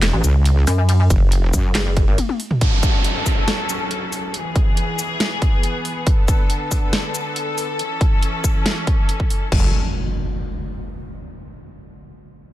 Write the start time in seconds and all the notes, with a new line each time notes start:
Already playing: E1
0.02 snare, clap, closed hi-hat, ride
0.13 A1
0.24 C#2, closed hi-hat, shaker
0.45 closed hi-hat, ride
0.67 F#2, open hi-hat, shaker
0.89 closed hi-hat, ride
1.10 F#1, kick, closed hi-hat, shaker
1.32 closed hi-hat, ride
1.53 F#2, kick, open hi-hat, shaker
1.75 F#1, snare, clap, closed hi-hat, ride
1.97 kick, closed hi-hat
2.08 G#1
2.18 closed hi-hat, high tom, ride
2.29 high tom
2.40 open hi-hat
2.51 mid tom
2.61 F#3 C#4 A4, kick, closed hi-hat, downlifter
2.83 kick, closed hi-hat, shaker
3.04 closed hi-hat
3.26 kick, open hi-hat, shaker
3.48 snare, closed hi-hat
3.69 closed hi-hat, shaker
3.91 closed hi-hat
4.12 open hi-hat, shaker
4.34 E3 B3 G#4, closed hi-hat
4.56 kick, closed hi-hat
4.77 closed hi-hat
4.99 open hi-hat, shaker
5.20 snare, closed hi-hat
5.42 kick, closed hi-hat
5.63 closed hi-hat
5.85 open hi-hat
6.07 D3 A4, kick, closed hi-hat
6.28 kick, closed hi-hat, shaker
6.50 closed hi-hat
6.71 kick, open hi-hat, shaker
6.93 snare, closed hi-hat
7.14 closed hi-hat, shaker
7.36 closed hi-hat
7.58 open hi-hat, shaker
7.79 E3 C#4, closed hi-hat
8.01 kick, closed hi-hat
8.23 closed hi-hat
8.44 kick, open hi-hat, shaker
8.66 snare, closed hi-hat
8.87 kick, closed hi-hat
9.09 closed hi-hat
9.20 kick
9.30 open hi-hat
9.52 F#1 F#3 C#4 A4, kick, crash, impact